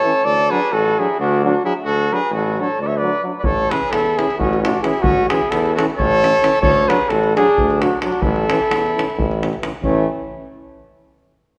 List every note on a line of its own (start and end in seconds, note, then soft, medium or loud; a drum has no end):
0.00 0.24 A4 loud
0.00 0.26 C#5 loud
0.04 0.12 E3 medium
0.04 0.13 C#4 medium
0.24 0.50 D2 medium
0.24 0.53 A4 loud
0.24 0.52 D5 loud
0.50 0.59 F#3 medium
0.50 0.60 D4 medium
0.50 0.73 G#4 loud
0.50 0.74 B4 loud
0.72 0.98 A1 loud
0.72 1.00 F#4 medium
0.72 1.01 A4 loud
0.99 1.07 F#3 medium
0.99 1.07 D4 medium
0.99 1.19 E4 medium
0.99 1.20 G#4 loud
1.20 1.55 D2 loud
1.20 1.42 D4 medium
1.20 1.42 F#4 loud
1.43 1.51 F#3 medium
1.43 1.53 D4 medium
1.43 1.63 D4 medium
1.43 1.63 F#4 loud
1.64 1.72 F#3 medium
1.64 1.72 D4 medium
1.64 1.73 E4 medium
1.64 1.74 G#4 medium
1.84 2.11 D2 medium
1.84 2.14 F#4 loud
1.84 2.15 A4 loud
2.11 2.19 F#3 medium
2.11 2.20 D4 medium
2.11 2.33 G#4 medium
2.11 2.33 B4 medium
2.31 2.57 A1 loud
2.31 2.62 F#4 medium
2.31 2.62 A4 medium
2.59 2.67 F#3 medium
2.59 2.68 D4 medium
2.59 2.80 A4 medium
2.59 2.80 C#5 medium
2.80 3.15 D2 loud
2.80 2.88 A4 medium
2.80 2.89 D5 medium
2.86 2.98 C#5 medium
2.86 2.99 E5 medium
2.96 3.22 B4 medium
2.96 3.23 D5 loud
3.03 3.11 F#3 medium
3.03 3.13 D4 medium
3.23 3.31 F#3 medium
3.23 3.33 D4 medium
3.38 3.46 B4 medium
3.38 3.46 D5 medium
3.44 3.70 A1 medium
3.44 3.73 A4 medium
3.44 3.72 C#5 loud
3.44 davul low loud
3.70 3.79 E3 medium
3.70 3.80 C#4 medium
3.70 3.94 G#4 medium
3.70 3.92 B4 loud
3.70 davul high medium
3.82 davul high soft
3.91 4.18 E2 medium
3.91 4.18 E4 medium
3.91 4.20 A4 loud
3.91 davul high medium
4.06 davul high soft
4.17 4.26 E3 medium
4.17 4.28 C#4 medium
4.17 4.39 E4 medium
4.17 4.38 G#4 loud
4.17 davul high medium
4.30 davul high soft
4.38 4.74 A1 loud
4.38 4.62 C#4 medium
4.38 4.61 F#4 medium
4.38 davul low medium
4.53 davul high soft
4.62 4.71 E3 medium
4.62 4.72 C#4 medium
4.62 4.82 D4 medium
4.62 4.81 F#4 loud
4.62 davul high medium
4.82 4.92 E3 medium
4.82 4.92 C#4 medium
4.82 5.04 E4 medium
4.82 5.02 G#4 loud
4.82 davul high medium
4.93 davul high soft
5.01 5.30 A1 medium
5.01 5.28 C#4 loud
5.01 5.28 F#4 loud
5.01 davul low loud
5.29 5.40 E3 medium
5.29 5.39 C#4 medium
5.29 5.49 E4 medium
5.29 5.52 G#4 loud
5.29 davul high medium
5.41 davul high soft
5.49 5.77 E2 loud
5.49 5.74 E4 medium
5.49 5.76 A4 loud
5.49 davul high medium
5.66 davul high soft
5.75 5.86 E3 medium
5.75 5.86 C#4 medium
5.75 5.85 F#4 medium
5.75 5.86 A4 medium
5.75 davul high medium
5.90 davul high soft
5.97 6.35 A1 loud
5.97 6.58 A4 loud
5.97 6.59 C#5 loud
5.97 davul low medium
6.12 davul high soft
6.22 6.30 E3 medium
6.22 6.31 C#4 medium
6.22 davul high medium
6.42 6.51 E3 medium
6.42 6.50 C#4 medium
6.42 davul high medium
6.53 davul high soft
6.62 6.89 D2 loud
6.62 6.90 A4 loud
6.62 6.90 C#5 loud
6.62 davul low loud
6.88 6.97 F#3 medium
6.88 6.98 D4 medium
6.88 7.10 G#4 medium
6.88 7.11 B4 loud
6.88 davul high medium
7.01 davul high soft
7.09 7.37 A1 loud
7.09 7.35 F#4 medium
7.09 7.36 A4 loud
7.09 davul high medium
7.23 davul high soft
7.36 7.46 F#3 medium
7.36 7.82 D4 medium
7.36 7.45 D4 medium
7.36 7.83 G#4 loud
7.36 davul high medium
7.47 davul high soft
7.58 7.94 D2 loud
7.58 davul low medium
7.70 davul high soft
7.81 7.91 F#3 medium
7.81 7.89 D4 medium
7.81 8.01 D4 medium
7.81 8.02 F#4 loud
7.81 davul high medium
8.01 8.12 F#3 medium
8.01 8.10 D4 medium
8.01 8.23 D4 medium
8.01 8.24 F#4 medium
8.01 davul high medium
8.12 davul high soft
8.22 8.49 A1 loud
8.22 9.62 E4 medium
8.22 9.62 A4 loud
8.22 davul low loud
8.36 davul high soft
8.49 8.59 E3 medium
8.49 8.58 C#4 medium
8.49 davul high medium
8.61 davul high soft
8.70 8.96 E2 medium
8.70 davul high medium
8.86 davul high soft
8.97 9.05 E3 medium
8.97 9.06 C#4 medium
8.97 davul high medium
9.10 davul high soft
9.17 9.53 A1 loud
9.17 davul low medium
9.31 davul high soft
9.42 9.50 E3 medium
9.42 9.50 C#4 medium
9.42 davul high medium
9.53 davul high soft
9.62 9.70 E3 medium
9.62 9.71 C#4 medium
9.62 davul high medium
9.82 10.07 A1 loud
9.82 10.07 E3 medium
9.82 10.07 A3 medium
9.82 10.07 C#4 medium
9.82 10.08 C#5 medium
9.82 davul low medium